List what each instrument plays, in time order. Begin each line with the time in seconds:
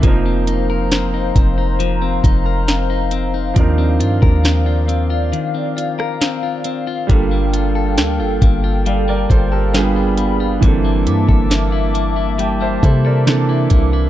Already playing: clean electric guitar C3 A#3 E4
0.01 808-style bass F1, grand piano F3 A#3 C4, clean electric guitar F3, analog synth pad C5 F5 A#5, kick, closed hi-hat
0.06 grand piano D#4 A#4
0.26 clean electric guitar C4
0.47 clean electric guitar D#4, closed hi-hat
0.70 clean electric guitar A#4
0.91 clean electric guitar C4, snare, closed hi-hat
1.14 clean electric guitar D#4
1.36 808-style bass F1, clean electric guitar C4, kick, closed hi-hat
1.58 clean electric guitar D#4
1.80 clean electric guitar F3, closed hi-hat
2.02 clean electric guitar C4
2.24 808-style bass F1, clean electric guitar D#4, kick, closed hi-hat
2.46 clean electric guitar A#4
2.68 clean electric guitar C4, snare, closed hi-hat
2.90 clean electric guitar D#4
3.11 clean electric guitar C4, closed hi-hat
3.34 clean electric guitar D#4
3.54 808-style bass D#2, clean electric guitar D#3, grand piano F3 C4 D4, analog synth pad D5, kick, closed hi-hat
3.59 grand piano D#4 A#4
3.78 clean electric guitar C4
4.00 808-style bass G2, clean electric guitar F4, closed hi-hat
4.22 808-style bass D#2, clean electric guitar A#4, kick
4.44 clean electric guitar C4, snare, closed hi-hat
4.66 clean electric guitar F4
4.88 clean electric guitar C4, closed hi-hat
5.10 clean electric guitar F4
5.32 clean electric guitar D#3, closed hi-hat
5.55 clean electric guitar C4
5.77 clean electric guitar F4, closed hi-hat
5.99 clean electric guitar A#4, cross-stick
6.21 clean electric guitar C4, snare, closed hi-hat
6.43 clean electric guitar F4
6.64 clean electric guitar C4, closed hi-hat
6.87 clean electric guitar F4
7.07 808-style bass G1, grand piano G3 A#3 D4, clean electric guitar G3, analog synth pad A4 G5, kick, closed hi-hat
7.12 grand piano F4 A4
7.31 clean electric guitar A#3
7.53 clean electric guitar F4, closed hi-hat
7.75 clean electric guitar A4
7.97 808-style bass D2, clean electric guitar A#3, snare, closed hi-hat
8.20 808-style bass G1, clean electric guitar F4
8.42 808-style bass G1, clean electric guitar A#3, kick, closed hi-hat
8.64 clean electric guitar F4
8.86 clean electric guitar G3, grand piano D5 F5, closed hi-hat
9.08 clean electric guitar A#3, grand piano A#4 D5
9.30 808-style bass G1, clean electric guitar F4, grand piano A4 C5, kick, closed hi-hat
9.52 grand piano G4 A#4, clean electric guitar A4
9.73 grand piano G3 A#3 D4 F4 G#4, clean electric guitar G3, analog synth pad G#4 B5, snare, closed hi-hat
9.81 grand piano B3
9.96 clean electric guitar F4
10.17 clean electric guitar B3, closed hi-hat
10.40 clean electric guitar F4
10.60 808-style bass G1, grand piano E3 A#3 C4, clean electric guitar G3, analog synth pad A#3 E5 A5 D6, kick, closed hi-hat
10.65 grand piano D4 A4
10.85 clean electric guitar A#3
11.06 808-style bass G2, clean electric guitar E4, closed hi-hat
11.29 808-style bass G1, clean electric guitar A4, kick
11.50 clean electric guitar A#3, snare, closed hi-hat
11.72 clean electric guitar E4
11.94 clean electric guitar A#3, closed hi-hat
12.16 clean electric guitar E4
12.39 clean electric guitar G3, grand piano E5 G5, closed hi-hat
12.61 clean electric guitar A#3, grand piano C5 E5
12.83 808-style bass C3, clean electric guitar E4, grand piano A4 C5, kick, closed hi-hat
13.05 clean electric guitar A4, grand piano A#4 D5
13.26 clean electric guitar C3, grand piano E3 A#3 C4 D4 A4, analog synth pad E5 D6, snare, closed hi-hat
13.49 clean electric guitar E4
13.70 808-style bass C2, clean electric guitar A#3, kick, closed hi-hat
13.93 clean electric guitar E4